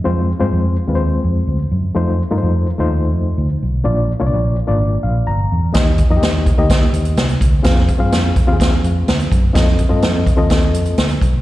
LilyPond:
<<
  \new Staff \with { instrumentName = "Reed electric piano" } { \time 4/4 \key f \dorian \tempo 4 = 126 << { r1 | r1 | r2 r8 f''8 bes''4 | r1 |
r1 | r1 | } \\ { <aes c' f' c''>8 r16 <aes c' f' c''>8. r16 <aes c' f' ces'' c''>4. r8. | <a ees' f' c''>8 r16 <a ees' f' bes' c''>8. r16 <a ees' f' c''>4. r8. | <bes d' f' d''>8 r16 <bes d' f' des'' d''>8. r16 <bes d' f' d''>4. r8. | <bes ees' g' ees''>8 r16 <bes ees' f' g' ees''>8. r16 <bes ees' g' ees''>4. r8. |
<c' f' aes' f''>8 r16 <c' f' aes' f''>8. r16 <c' f' g' aes' f''>4. r8. | <c' f' a' ees''>8 r16 <c' f' a' ees''>8. r16 <c' f' a' ees''>4. r8. | } >> }
  \new Staff \with { instrumentName = "Fingered electric bass" } { \clef bass \time 4/4 \key f \dorian f,8. g,16 f,8. ees,8. f,8 d,8 ges,8 | f,8. g,16 f,8. ees,8. f,8 d,8 ces,8 | bes,,8. c,16 bes,,8. aes,,8. bes,,8 g,,8 fes,8 | ees,8. f,16 ees,8. d,8. ees,8 c,8 d,8 |
f,8. g,16 f,8. ees,8. f,8 d,8 ges,8 | f,8. g,16 f,8. ees,8. f,8 d,8 ces,8 | }
  \new DrumStaff \with { instrumentName = "Drums" } \drummode { \time 4/4 r4 r4 r4 r4 | r4 r4 r4 r4 | r4 r4 r4 r4 | <hh bd sn>8 <hh bd>8 <hh sn>8 <hh bd>8 <hh bd sn>8 hh16 hh16 <hh sn>16 hh16 <hh bd>8 |
<hh bd sn>16 sn16 <hh bd>8 <hh sn>8 <hh bd>8 <hh bd sn>8 hh8 <hh sn>16 hh16 <hh bd>8 | <hh bd sn>16 sn16 <hh bd>8 <hh sn>8 <hh bd>8 <hh bd sn>8 hh16 hh16 <hh sn>16 hh16 <hh bd>8 | }
>>